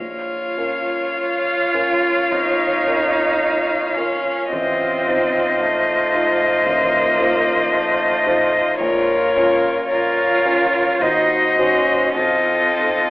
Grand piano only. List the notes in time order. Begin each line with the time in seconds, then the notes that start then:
0.00 A#1
0.57 C#4 F4 A#4
1.74 C#4 F4 A#4
2.31 F2
2.87 C#4 F4 A#4
3.97 C#4 F4 A#4
4.53 A1
5.08 D#4 F4 C5
6.14 D#4 F4 C5
6.67 A1
7.20 D#4 F4 C5
8.26 D#4 F4 C5
8.81 A#1
9.37 C#4 F4 C#5
10.45 C#4 F4 C#5
11.00 D#2
11.58 D#4 F#4 C5
12.16 F2
12.79 D#4 F4 A4